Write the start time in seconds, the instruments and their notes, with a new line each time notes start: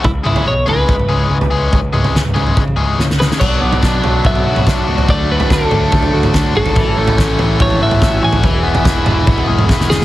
0.04 picked electric bass C#2, clean electric guitar E4, kick, floor tom
0.24 picked electric bass C#2, overdriven electric guitar E3 G#3 C#4 G#4, clean electric guitar E4, mid tom
0.36 floor tom
0.47 picked electric bass B1, clean electric guitar C#5
0.66 picked electric bass C#2, overdriven electric guitar E3 G#3 C#4 G#4, clean electric guitar B4, floor tom
0.88 picked electric bass C#2, kick, floor tom
0.99 mid tom
1.09 picked electric bass C#2, overdriven electric guitar E3 G#3 C#4 G#4
1.29 picked electric bass C#2
1.41 floor tom
1.51 picked electric bass C#2, overdriven electric guitar E3 G#3 C#4 G#4
1.73 picked electric bass C#2, kick, floor tom
1.93 picked electric bass C#2, overdriven electric guitar E3 G#3 C#4 G#4, mid tom
2.04 floor tom
2.14 picked electric bass C#2, snare
2.25 mid tom
2.34 picked electric bass C#2, overdriven electric guitar E3 G#3 C#4 G#4, floor tom
2.47 mid tom
2.57 picked electric bass C#3, kick, floor tom
2.68 mid tom
2.76 picked electric bass C#2, overdriven electric guitar E3 G#3 C#4 G#4
2.98 picked electric bass C#2, snare
3.11 snare
3.19 overdriven electric guitar E3 G#3 C#4 G#4, clean electric guitar B4, snare
3.32 snare
3.40 picked electric bass B1, overdriven electric guitar B2 F#3 B3 D4, string machine F#4 D5 B5 D6, clean electric guitar D5, kick, floor tom, crash
3.61 picked electric bass B1, overdriven electric guitar B3
3.72 floor tom
3.82 picked electric bass B1, overdriven electric guitar D4, kick, snare
4.03 picked electric bass B1, overdriven electric guitar F#3, floor tom
4.24 picked electric bass B1, overdriven electric guitar B3, clean electric guitar E5, kick, floor tom, mid tom
4.35 floor tom
4.46 picked electric bass B1, overdriven electric guitar F#4
4.56 floor tom, mid tom
4.66 picked electric bass B1, overdriven electric guitar D4, kick, snare
4.87 picked electric bass C#2, overdriven electric guitar F#4
4.98 floor tom
5.07 picked electric bass D2, overdriven electric guitar D3 F#3 A3 D4, clean electric guitar D5, string machine A5 D6, kick, floor tom
5.30 overdriven electric guitar A3, clean electric guitar B4
5.40 floor tom
5.49 picked electric bass D2, overdriven electric guitar D4, clean electric guitar A4, kick, snare, floor tom
5.71 picked electric bass D2, overdriven electric guitar A3, floor tom, mid tom
5.92 picked electric bass D2, overdriven electric guitar A3, kick, floor tom, mid tom
6.02 floor tom
6.13 picked electric bass D2, overdriven electric guitar F#4
6.23 floor tom, mid tom
6.34 picked electric bass D2, overdriven electric guitar D4, kick, snare, floor tom
6.55 picked electric bass G#1, overdriven electric guitar F#4, clean electric guitar A4, mid tom
6.66 floor tom
6.75 picked electric bass A1, overdriven electric guitar A2 E3 A3 C#4 E4, string machine C#5 E6, kick, floor tom
6.97 picked electric bass A1, overdriven electric guitar A3
7.08 floor tom
7.18 picked electric bass A1, overdriven electric guitar C#4, kick, snare
7.39 picked electric bass A1, overdriven electric guitar E3, floor tom
7.59 picked electric bass A1, overdriven electric guitar A3, clean electric guitar C#5, kick, floor tom, mid tom
7.70 floor tom
7.80 picked electric bass A1, overdriven electric guitar F#4, clean electric guitar E5
7.91 floor tom, mid tom
8.02 picked electric bass A1, overdriven electric guitar C#4, clean electric guitar E5, kick, snare
8.22 picked electric bass A1, overdriven electric guitar F#4, clean electric guitar G#5
8.33 floor tom
8.42 picked electric bass E1, overdriven electric guitar E3 G#3 B3 E4, string machine G#4 E5 B5, kick, floor tom
8.63 overdriven electric guitar B3
8.75 floor tom
8.85 picked electric bass E1, overdriven electric guitar E4, kick, snare, floor tom
9.06 picked electric bass E1, overdriven electric guitar E3, floor tom, mid tom
9.26 picked electric bass E1, overdriven electric guitar B3, kick, floor tom, mid tom
9.38 floor tom
9.47 picked electric bass E1, overdriven electric guitar G#4
9.58 floor tom, mid tom
9.69 picked electric bass E1, overdriven electric guitar E4, kick, snare
9.81 snare
9.89 picked electric bass E1, overdriven electric guitar G#4, clean electric guitar G#4, snare
10.02 snare